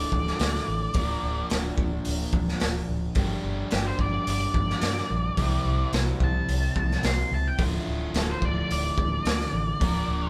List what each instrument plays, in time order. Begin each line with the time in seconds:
Already playing: overdriven electric guitar D2 A2 D3 A3 F4, lead electric guitar D5
0.12 fingered electric bass D1, kick
0.27 snare
0.39 fingered electric bass D2, snare, open hi-hat
0.55 snare
0.68 fingered electric bass A1
0.94 fingered electric bass D1, overdriven electric guitar A#2 F3 A#3, kick, open hi-hat
0.98 overdriven electric guitar D4 F4 A#4
1.23 fingered electric bass D1
1.50 fingered electric bass D1, snare, open hi-hat
1.78 fingered electric bass D1, kick
2.05 fingered electric bass D1, open hi-hat
2.33 fingered electric bass D1, kick
2.48 snare
2.60 fingered electric bass D1, snare, open hi-hat
2.89 fingered electric bass D1
3.15 fingered electric bass G1, overdriven electric guitar G2 D3 G3 A#3 D4 G4, kick, open hi-hat
3.44 fingered electric bass G1
3.71 fingered electric bass G1, lead electric guitar G4, snare, open hi-hat
3.87 lead electric guitar C5
3.99 fingered electric bass G1, lead electric guitar D5, kick
4.27 fingered electric bass G1, lead electric guitar D5, open hi-hat
4.54 fingered electric bass G1, kick
4.70 snare
4.81 fingered electric bass G2, snare, open hi-hat
4.98 snare
5.10 fingered electric bass A#1
5.37 fingered electric bass C2, overdriven electric guitar C3 G3 C4 E4, kick, open hi-hat
5.41 overdriven electric guitar G4 C5
5.65 fingered electric bass C2
5.93 fingered electric bass C2, snare, open hi-hat
6.20 fingered electric bass C2, lead electric guitar A5, kick
6.48 fingered electric bass C2, open hi-hat
6.75 fingered electric bass C2, kick
6.91 snare
7.03 fingered electric bass C2, lead electric guitar C6, snare, open hi-hat
7.31 fingered electric bass C#2, lead electric guitar A5
7.48 lead electric guitar G5
7.58 fingered electric bass D1, overdriven electric guitar D2 A2 D3 A3 F4, kick, open hi-hat
7.88 fingered electric bass D1
8.14 fingered electric bass D1, snare, open hi-hat
8.18 lead electric guitar A4
8.30 lead electric guitar C5
8.42 fingered electric bass D1, lead electric guitar D5, kick
8.71 fingered electric bass D1, lead electric guitar D5, open hi-hat
8.98 fingered electric bass D1, kick
9.25 fingered electric bass D2, snare, open hi-hat
9.41 snare
9.53 fingered electric bass A1
9.80 fingered electric bass D1, overdriven electric guitar A#2 F3 A#3 D4 F4 A#4, kick, open hi-hat
10.08 fingered electric bass D1